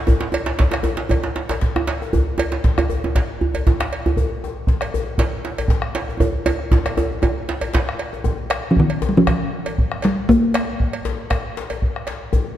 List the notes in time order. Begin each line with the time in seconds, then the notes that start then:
0.07 bombo low, djembe tone, djembe bass
0.20 djembe slap
0.32 cowbell, djembe tone
0.46 djembe slap
0.59 bombo low, djembe slap
0.71 bombo rim, cowbell, djembe slap, djembe tone
0.83 djembe tone, djembe bass
0.97 djembe slap
1.09 bombo low, cowbell, djembe tone
1.24 djembe slap
1.36 djembe slap
1.49 cowbell, djembe slap, djembe tone, djembe bass
1.61 bombo low, djembe slap
1.76 bombo rim, djembe tone
1.87 cowbell, djembe slap
2.02 bombo rim, djembe tone
2.13 bombo low, djembe bass
2.38 cowbell, djembe tone
2.52 djembe slap
2.64 bombo low, djembe slap
2.78 bombo rim, cowbell, djembe tone, djembe bass
2.90 djembe bass
3.04 djembe tone
3.15 bombo low, cowbell, djembe slap, djembe tone
3.41 djembe bass
3.54 cowbell, djembe tone, djembe bass
3.67 bombo low, djembe slap, djembe tone
3.80 bombo rim, djembe slap
3.93 cowbell
4.06 bombo rim, djembe tone, djembe bass
4.17 bombo low, djembe bass
4.44 djembe tone
4.67 bombo low, djembe slap
4.81 bombo rim, cowbell, djembe tone
4.94 djembe bass
5.18 bombo low, cowbell, djembe slap, djembe tone
5.45 djembe slap
5.58 cowbell, djembe tone, djembe bass
5.68 bombo low, djembe slap
5.82 bombo rim
5.95 cowbell, djembe slap
6.08 bombo rim, djembe tone
6.20 bombo rim, bombo low, djembe tone, djembe bass
6.46 bombo rim, cowbell, djembe tone
6.59 bombo rim
6.71 bombo low, djembe slap, djembe tone
6.86 bombo rim, cowbell, djembe slap, djembe tone
6.97 djembe tone, djembe bass
7.11 djembe slap
7.22 bombo low, cowbell, djembe slap, djembe tone
7.49 bombo rim, djembe slap
7.61 cowbell, djembe tone, djembe bass
7.74 bombo rim, bombo low, djembe slap
7.87 bombo rim, djembe slap
7.99 cowbell, djembe slap
8.13 bombo rim, djembe slap, djembe tone
8.24 bombo low, djembe slap, djembe tone, djembe bass
8.50 bombo rim, cowbell, djembe slap
8.71 F3
8.76 D#3, bombo low
8.90 cowbell
9.02 djembe slap, djembe bass
9.09 G3
9.17 F3
9.27 bombo rim, bombo low, cowbell, djembe tone
9.66 cowbell, djembe bass
9.78 bombo low
9.92 bombo rim
10.02 G3, cowbell, djembe slap
10.29 A#3, bombo low, djembe slap, djembe tone, djembe bass
10.54 bombo rim, cowbell, djembe slap
10.80 bombo low
10.93 cowbell
11.05 djembe slap, djembe bass
11.30 bombo rim, bombo low, cowbell, djembe tone
11.57 djembe slap
11.70 cowbell, djembe bass
11.82 bombo low
11.96 bombo rim
12.07 cowbell, djembe slap
12.33 bombo low, djembe slap, djembe tone, djembe bass